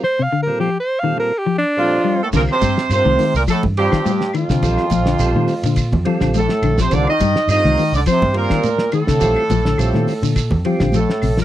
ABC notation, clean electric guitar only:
X:1
M:4/4
L:1/16
Q:"Swing 16ths" 1/4=105
K:Cdor
V:1 name="Clean electric guitar" clef=bass
z C, D,2 F,2 z E, z2 F,2 z2 G,2 | D,2 G,2 z E, E,2 F,2 z E, G,2 E, D,- | D, z F, D,2 E,2 D,2 z F, D, F,2 D, F, | D,2 G,2 z E, E,2 F,2 z E, z2 E, D,- |
D, z F, D,2 E,2 D,2 z F, D, F,2 C, F, |]